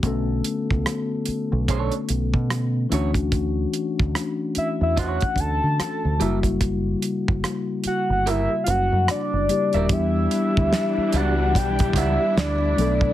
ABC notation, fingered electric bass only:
X:1
M:4/4
L:1/16
Q:"Swing 16ths" 1/4=73
K:Edor
V:1 name="Fingered electric bass" clef=bass
B,,,2 z C,, z3 B,,,2 z B,,, B,,3 D,,2- | D,,2 z D,, z3 E,,2 z D,, D, z D,, F,,,2- | F,,,2 z F,,, z3 G,,,2 z F,,, F,, z F,,, z ^D,,, | E,,2 z D,, z2 C,,2 B,,,2 C,, z D,,2 B,,,2 |]